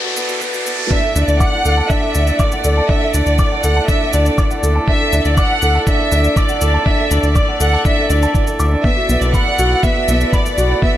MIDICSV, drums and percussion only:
0, 0, Header, 1, 2, 480
1, 0, Start_track
1, 0, Key_signature, 2, "major"
1, 0, Tempo, 495868
1, 879, Time_signature, 4, 2, 24, 8
1, 10621, End_track
2, 0, Start_track
2, 0, Title_t, "Drums"
2, 158, Note_on_c, 9, 82, 60
2, 255, Note_off_c, 9, 82, 0
2, 279, Note_on_c, 9, 82, 30
2, 376, Note_off_c, 9, 82, 0
2, 397, Note_on_c, 9, 36, 105
2, 398, Note_on_c, 9, 82, 42
2, 494, Note_off_c, 9, 36, 0
2, 495, Note_off_c, 9, 82, 0
2, 520, Note_on_c, 9, 82, 39
2, 617, Note_off_c, 9, 82, 0
2, 642, Note_on_c, 9, 82, 60
2, 739, Note_off_c, 9, 82, 0
2, 877, Note_on_c, 9, 36, 101
2, 974, Note_off_c, 9, 36, 0
2, 1121, Note_on_c, 9, 82, 66
2, 1218, Note_off_c, 9, 82, 0
2, 1240, Note_on_c, 9, 82, 30
2, 1337, Note_off_c, 9, 82, 0
2, 1358, Note_on_c, 9, 36, 105
2, 1359, Note_on_c, 9, 82, 44
2, 1454, Note_off_c, 9, 36, 0
2, 1456, Note_off_c, 9, 82, 0
2, 1599, Note_on_c, 9, 82, 63
2, 1696, Note_off_c, 9, 82, 0
2, 1837, Note_on_c, 9, 36, 108
2, 1839, Note_on_c, 9, 82, 43
2, 1934, Note_off_c, 9, 36, 0
2, 1936, Note_off_c, 9, 82, 0
2, 2076, Note_on_c, 9, 82, 63
2, 2173, Note_off_c, 9, 82, 0
2, 2197, Note_on_c, 9, 82, 30
2, 2294, Note_off_c, 9, 82, 0
2, 2315, Note_on_c, 9, 82, 40
2, 2317, Note_on_c, 9, 36, 107
2, 2412, Note_off_c, 9, 82, 0
2, 2414, Note_off_c, 9, 36, 0
2, 2437, Note_on_c, 9, 82, 41
2, 2534, Note_off_c, 9, 82, 0
2, 2556, Note_on_c, 9, 82, 64
2, 2653, Note_off_c, 9, 82, 0
2, 2798, Note_on_c, 9, 36, 114
2, 2895, Note_off_c, 9, 36, 0
2, 3038, Note_on_c, 9, 82, 70
2, 3135, Note_off_c, 9, 82, 0
2, 3158, Note_on_c, 9, 82, 30
2, 3255, Note_off_c, 9, 82, 0
2, 3276, Note_on_c, 9, 82, 44
2, 3279, Note_on_c, 9, 36, 107
2, 3372, Note_off_c, 9, 82, 0
2, 3376, Note_off_c, 9, 36, 0
2, 3519, Note_on_c, 9, 82, 70
2, 3615, Note_off_c, 9, 82, 0
2, 3759, Note_on_c, 9, 36, 110
2, 3759, Note_on_c, 9, 82, 46
2, 3856, Note_off_c, 9, 36, 0
2, 3856, Note_off_c, 9, 82, 0
2, 3999, Note_on_c, 9, 82, 66
2, 4095, Note_off_c, 9, 82, 0
2, 4120, Note_on_c, 9, 82, 29
2, 4217, Note_off_c, 9, 82, 0
2, 4240, Note_on_c, 9, 36, 110
2, 4242, Note_on_c, 9, 82, 39
2, 4337, Note_off_c, 9, 36, 0
2, 4338, Note_off_c, 9, 82, 0
2, 4363, Note_on_c, 9, 82, 43
2, 4460, Note_off_c, 9, 82, 0
2, 4485, Note_on_c, 9, 82, 65
2, 4582, Note_off_c, 9, 82, 0
2, 4720, Note_on_c, 9, 36, 105
2, 4817, Note_off_c, 9, 36, 0
2, 4962, Note_on_c, 9, 82, 73
2, 5059, Note_off_c, 9, 82, 0
2, 5082, Note_on_c, 9, 82, 32
2, 5178, Note_off_c, 9, 82, 0
2, 5200, Note_on_c, 9, 36, 102
2, 5200, Note_on_c, 9, 82, 44
2, 5297, Note_off_c, 9, 36, 0
2, 5297, Note_off_c, 9, 82, 0
2, 5440, Note_on_c, 9, 82, 68
2, 5536, Note_off_c, 9, 82, 0
2, 5681, Note_on_c, 9, 36, 106
2, 5682, Note_on_c, 9, 82, 46
2, 5778, Note_off_c, 9, 36, 0
2, 5779, Note_off_c, 9, 82, 0
2, 5921, Note_on_c, 9, 82, 71
2, 6018, Note_off_c, 9, 82, 0
2, 6042, Note_on_c, 9, 82, 30
2, 6139, Note_off_c, 9, 82, 0
2, 6160, Note_on_c, 9, 36, 118
2, 6162, Note_on_c, 9, 82, 42
2, 6257, Note_off_c, 9, 36, 0
2, 6258, Note_off_c, 9, 82, 0
2, 6280, Note_on_c, 9, 82, 44
2, 6377, Note_off_c, 9, 82, 0
2, 6400, Note_on_c, 9, 82, 66
2, 6497, Note_off_c, 9, 82, 0
2, 6640, Note_on_c, 9, 36, 105
2, 6737, Note_off_c, 9, 36, 0
2, 6881, Note_on_c, 9, 82, 67
2, 6978, Note_off_c, 9, 82, 0
2, 7001, Note_on_c, 9, 82, 30
2, 7098, Note_off_c, 9, 82, 0
2, 7119, Note_on_c, 9, 82, 44
2, 7120, Note_on_c, 9, 36, 103
2, 7215, Note_off_c, 9, 82, 0
2, 7216, Note_off_c, 9, 36, 0
2, 7359, Note_on_c, 9, 82, 71
2, 7456, Note_off_c, 9, 82, 0
2, 7599, Note_on_c, 9, 36, 113
2, 7600, Note_on_c, 9, 82, 45
2, 7696, Note_off_c, 9, 36, 0
2, 7697, Note_off_c, 9, 82, 0
2, 7840, Note_on_c, 9, 82, 64
2, 7937, Note_off_c, 9, 82, 0
2, 7962, Note_on_c, 9, 82, 32
2, 8059, Note_off_c, 9, 82, 0
2, 8079, Note_on_c, 9, 36, 111
2, 8081, Note_on_c, 9, 82, 39
2, 8176, Note_off_c, 9, 36, 0
2, 8178, Note_off_c, 9, 82, 0
2, 8200, Note_on_c, 9, 82, 42
2, 8297, Note_off_c, 9, 82, 0
2, 8320, Note_on_c, 9, 82, 61
2, 8417, Note_off_c, 9, 82, 0
2, 8559, Note_on_c, 9, 36, 103
2, 8655, Note_off_c, 9, 36, 0
2, 8801, Note_on_c, 9, 82, 68
2, 8898, Note_off_c, 9, 82, 0
2, 8920, Note_on_c, 9, 82, 30
2, 9017, Note_off_c, 9, 82, 0
2, 9038, Note_on_c, 9, 36, 98
2, 9041, Note_on_c, 9, 82, 45
2, 9134, Note_off_c, 9, 36, 0
2, 9137, Note_off_c, 9, 82, 0
2, 9279, Note_on_c, 9, 82, 61
2, 9376, Note_off_c, 9, 82, 0
2, 9518, Note_on_c, 9, 36, 106
2, 9520, Note_on_c, 9, 82, 43
2, 9614, Note_off_c, 9, 36, 0
2, 9617, Note_off_c, 9, 82, 0
2, 9759, Note_on_c, 9, 82, 67
2, 9855, Note_off_c, 9, 82, 0
2, 9881, Note_on_c, 9, 82, 32
2, 9977, Note_off_c, 9, 82, 0
2, 9997, Note_on_c, 9, 36, 110
2, 10002, Note_on_c, 9, 82, 40
2, 10094, Note_off_c, 9, 36, 0
2, 10099, Note_off_c, 9, 82, 0
2, 10123, Note_on_c, 9, 82, 42
2, 10219, Note_off_c, 9, 82, 0
2, 10241, Note_on_c, 9, 82, 57
2, 10338, Note_off_c, 9, 82, 0
2, 10477, Note_on_c, 9, 36, 107
2, 10574, Note_off_c, 9, 36, 0
2, 10621, End_track
0, 0, End_of_file